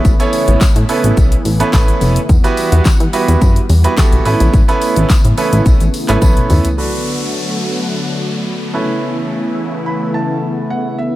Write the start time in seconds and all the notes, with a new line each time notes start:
Already playing: C#3 E3 A3 B3 C#4 E4 A4 B4
0.05 A1, kick, tambourine, shaker
0.20 B3 C#4 E4 A4 C#5, closed hi-hat, tambourine, shaker
0.33 open hi-hat, tambourine, shaker
0.48 A1, closed hi-hat, shaker
0.61 A2, kick, snare, clap, tambourine, shaker
0.76 A2, closed hi-hat, shaker
0.89 B3 C#4 E4 A4 B4, open hi-hat, tambourine, shaker
1.04 A1, closed hi-hat, shaker
1.17 B1, kick, tambourine, shaker
1.32 closed hi-hat, shaker
1.45 A1, open hi-hat, tambourine, shaker
1.60 B3 C#4 E4 A4 B4, closed hi-hat, shaker
1.73 A1 B3 C#4 E4 A4 B4, kick, snare, clap, tambourine, shaker
1.88 closed hi-hat, shaker
2.01 F1, open hi-hat, tambourine, shaker
2.16 closed hi-hat, shaker
2.29 E2 G3 F#5, kick, tambourine, shaker
2.44 B3 E4 F#4 G4 B4, closed hi-hat, tambourine, shaker
2.57 open hi-hat, tambourine, shaker
2.72 E2, closed hi-hat, shaker
2.85 E3, kick, snare, clap, tambourine, shaker
3.00 E3, closed hi-hat, shaker
3.13 B3 E4 F#4 G4 B4, open hi-hat, tambourine, shaker
3.28 E2, closed hi-hat, tambourine, shaker
3.41 F#2, kick, tambourine, shaker
3.56 closed hi-hat, shaker
3.69 E2, open hi-hat, tambourine, shaker
3.84 B3 E4 F#4 G4 B4, closed hi-hat, shaker
3.97 F#4 G4 A4, kick, snare, clap, tambourine, shaker
4.12 B1, closed hi-hat, shaker
4.25 A1 C#3 A3 B3 C#4 E4 A4 B4, open hi-hat, tambourine, shaker
4.40 A#1, closed hi-hat, tambourine, shaker
4.53 A1, kick, tambourine, shaker
4.68 B3 C#4 E4 A4 B4, closed hi-hat, tambourine, shaker
4.81 open hi-hat, tambourine, shaker
4.96 A1, closed hi-hat, shaker
5.10 kick, snare, clap, tambourine, shaker
5.25 A2, closed hi-hat, shaker
5.37 B3 C#4 E4 A4 B4, open hi-hat, tambourine, shaker
5.53 A1, closed hi-hat, tambourine, shaker
5.66 B1, kick, tambourine, shaker
5.80 A1, closed hi-hat, tambourine, shaker
5.94 open hi-hat, tambourine, shaker
6.08 A1 B3 C#4 E4 A4 B4, clap, closed hi-hat, shaker
6.21 B1 B3 C#4 E4 A4 B4, kick, high tom, tambourine, shaker
6.37 closed hi-hat, mid tom, shaker
6.50 D#2, mid tom, open hi-hat, tambourine, shaker
6.65 closed hi-hat, floor tom, tambourine, shaker
6.77 D3 F#3 A3 B3 D4 F#4 A4 B4, downlifter
8.73 C#3 E3 C#4 E4 A4 B4
9.86 B5
10.14 A5
10.70 F#5
10.98 E5